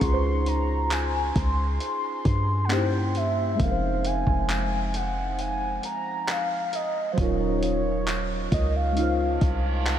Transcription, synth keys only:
0.00 2.65 C#4 medium
0.00 2.66 D#4 medium
0.00 2.64 G#4 medium
0.04 2.67 F4 medium
0.04 0.10 B4 medium
0.13 2.72 C5 medium
2.68 3.58 A#3 medium
2.68 3.59 C#4 medium
2.68 2.77 D#4 soft
2.68 3.60 G4 medium
2.73 3.61 C5 medium
2.77 3.63 E4 medium
3.55 7.11 G#3 medium
3.55 7.13 C4 medium
3.60 7.15 F3 medium
3.60 7.14 D#4 medium
3.65 3.68 A#4 medium
3.71 7.19 C5 medium
7.13 8.91 F#3 medium
7.13 8.92 C#4 medium
7.18 8.93 D#4 medium
7.18 8.94 F4 medium
7.23 8.96 A#4 medium
8.92 9.99 G#3 medium
8.92 9.99 C#4 medium
8.97 9.99 D#4 medium
8.97 9.99 F4 medium
9.02 9.99 C5 medium

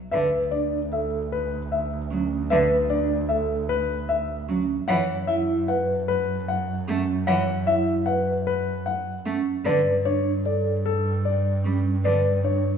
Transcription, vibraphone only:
0.12 0.38 B4 medium
0.52 0.78 D4 medium
0.92 1.17 A4 soft
2.11 2.37 C#4 medium
2.50 2.76 B4 medium
2.90 3.16 D4 medium
3.30 3.56 A4 medium
4.49 4.75 C#4 medium
4.88 5.15 C#5 medium
5.28 5.54 E4 medium
5.68 5.94 B4 medium
6.87 7.13 C#4 medium
7.27 7.53 C#5 medium
7.67 7.93 E4 medium
8.06 8.32 B4 medium
9.25 9.52 C#4 medium
9.66 9.91 B4 medium
10.06 10.31 D4 medium
10.45 10.71 A4 medium
11.64 11.90 C#4 medium
12.04 12.30 B4 medium
12.44 12.70 D4 soft

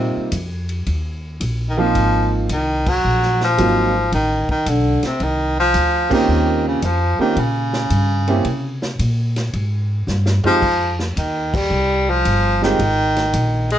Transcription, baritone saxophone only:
0.00 0.70 C3 loud
1.69 1.80 D#3 medium
1.78 2.32 F3 loud
2.53 2.90 D#3 medium
2.89 3.42 F#3 loud
3.44 4.09 F3 loud
4.14 4.47 D#3 loud
4.51 4.70 D#3 medium
4.69 5.04 D3 medium
5.06 5.25 C3 medium
5.23 5.59 D#3 loud
5.60 6.09 F3 loud
6.14 6.63 D#3 medium
6.68 6.86 C#3 medium
6.84 7.20 F3 medium
7.21 7.41 D#3 medium
7.39 9.00 C#3 medium
10.46 10.96 F3 loud
11.18 11.57 D#3 medium
11.55 12.11 G3 loud
12.10 12.63 F3 medium
12.64 13.67 D#3 loud
13.72 13.79 G#3 loud

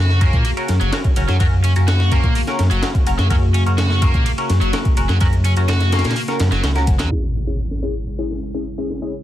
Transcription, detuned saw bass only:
0.00 0.30 F#2 medium
0.33 0.43 A#2 medium
0.69 0.79 F#2 loud
0.81 0.91 F#1 medium
1.17 1.27 F#1 medium
1.29 1.39 F#2 medium
1.41 1.73 F#2 loud
1.77 1.86 F#2 medium
1.88 2.21 F#2 medium
2.24 2.34 A#2 medium
2.59 2.69 F#2 loud
2.72 2.81 F#1 medium
3.07 3.17 F#1 medium
3.19 3.29 F#2 medium
3.31 3.63 F#2 loud
3.67 3.76 F#2 medium
3.78 4.11 F#2 medium
4.14 4.24 A#2 medium
4.50 4.60 F#2 loud
4.62 4.72 F#1 loud
4.97 5.07 F#1 medium
5.09 5.19 F#2 medium
5.21 5.54 F#2 loud
5.56 5.67 F#2 medium
5.69 6.01 F#2 medium
6.05 6.14 A#2 medium
6.40 6.50 F#2 loud
6.52 6.62 F#1 medium
6.64 6.89 C#2 loud
6.88 7.01 F#1 loud
7.00 7.10 E2 medium

